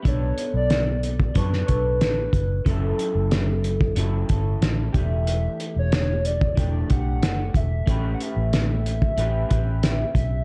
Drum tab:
HH |x-x-x-x-x-x-x-x-|x-x-x-x-x-x-x-x-|x-x-x-x-x-x-x-x-|x-x-x-x-x-x-x-x-|
SD |----o----o--o---|----o-------o---|----o-------o---|----o-------o---|
BD |o------oo-o---o-|o------o--o---o-|-------oo-o---o-|o------o--o---o-|